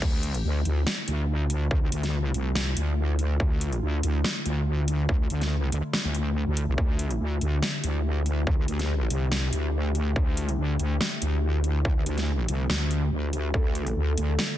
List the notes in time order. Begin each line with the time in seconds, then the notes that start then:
0.02 D2 D3 A3 E4 F4, kick, crash
0.23 closed hi-hat
0.34 closed hi-hat
0.44 D2
0.65 D2, closed hi-hat
0.87 snare
1.08 D2, closed hi-hat
1.50 closed hi-hat
1.71 D2, kick
1.92 D2, closed hi-hat
2.03 snare, closed hi-hat
2.34 C2, closed hi-hat
2.55 snare
2.77 D2, closed hi-hat
3.19 closed hi-hat
3.40 D2, kick
3.61 closed hi-hat
3.72 closed hi-hat
3.82 D2
4.03 D2, closed hi-hat
4.24 snare
4.46 D2, closed hi-hat
4.88 closed hi-hat
5.09 D2, kick
5.30 D2, closed hi-hat
5.41 snare, closed hi-hat
5.72 D2, closed hi-hat
5.93 snare
6.05 D2
6.15 closed hi-hat
6.47 D2
6.57 closed hi-hat
6.68 C2
6.78 D2 G4, kick
6.99 closed hi-hat
7.10 closed hi-hat
7.20 D2
7.41 D2, closed hi-hat
7.62 snare
7.84 D2, closed hi-hat
8.26 closed hi-hat
8.47 D2, kick
8.68 D2, closed hi-hat
8.79 snare, closed hi-hat
9.10 C2, closed hi-hat
9.32 snare
9.53 D2, closed hi-hat
9.95 closed hi-hat
10.16 D2, kick
10.37 closed hi-hat
10.49 closed hi-hat
10.58 D2
10.79 D2, closed hi-hat
11.01 snare
11.22 D2, closed hi-hat
11.64 closed hi-hat
11.85 D2, kick
12.06 D2, closed hi-hat
12.18 snare, closed hi-hat
12.48 C2, closed hi-hat
12.70 D2, snare
12.91 closed hi-hat
13.12 D2
13.33 closed hi-hat
13.54 D2 D4 F4 A4, kick
13.75 closed hi-hat
13.87 A4, closed hi-hat
13.96 D2
14.08 A4
14.17 D2, closed hi-hat
14.29 A4
14.39 snare